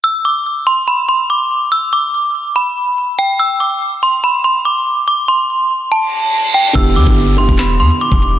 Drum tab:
CC |----------------|----------------|----------------|----------------|
HH |----------------|----------------|----------------|----------------|
CP |----------------|----------------|----------------|----------------|
SD |----------------|----------------|----------------|----------------|
BD |----------------|----------------|----------------|----------------|

CC |x---------------|
HH |x--x--x-x--xx-x-|
CP |--------x-------|
SD |--------o-------|
BD |o--o---o-----o--|